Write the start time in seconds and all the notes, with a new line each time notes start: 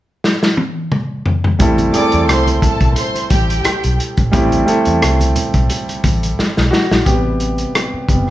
0.24 snare
0.43 snare
0.57 high tom
0.92 mid tom
1.26 floor tom
1.44 floor tom
1.59 A1 G3 A3 C4 E4 A4, kick, closed hi-hat, muted conga, low conga
1.78 closed hi-hat, muted conga, high conga
1.92 G3 A3 C4 E4 G#4 D5 D6, closed hi-hat
2.02 A4
2.12 E2, closed hi-hat
2.27 C2 C5 C6, cross-stick, closed hi-hat, muted conga
2.47 closed hi-hat, high conga
2.62 A4 A5, kick, closed hi-hat, low conga
2.80 B1, kick, closed hi-hat
2.96 C5 C6, closed hi-hat, muted conga
3.15 closed hi-hat, muted conga
3.30 A1 G4 G5, kick, closed hi-hat, high conga
3.50 closed hi-hat
3.64 muted fingered electric bass stroke, cross-stick, closed hi-hat, muted conga
3.84 B1, closed hi-hat
4.00 closed hi-hat
4.17 A#1, kick, closed hi-hat
4.31 A1 G3 A3 C4 E4 G4, kick, closed hi-hat, muted conga, low conga
4.51 closed hi-hat, muted conga, high conga
4.65 G3 A3 C4 E4 A4, closed hi-hat
4.85 E2, closed hi-hat
5.02 C2, cross-stick, closed hi-hat
5.19 closed hi-hat, muted conga, high conga
5.36 closed hi-hat, low conga
5.54 B1, kick, cross-stick, closed hi-hat
5.70 closed hi-hat
5.88 closed hi-hat, muted conga
6.04 A1, kick, closed hi-hat, high conga
6.23 closed hi-hat
6.39 muted fingered electric bass stroke, snare
6.57 B1, snare
6.71 F#4, snare
6.91 A#1, snare
7.05 A1 C3 G3 B3 G4, kick, closed hi-hat
7.40 closed hi-hat
7.58 closed hi-hat
7.75 cross-stick, closed hi-hat
7.94 muted fingered electric bass stroke
8.09 F#1 C3 G3 B3, kick, closed hi-hat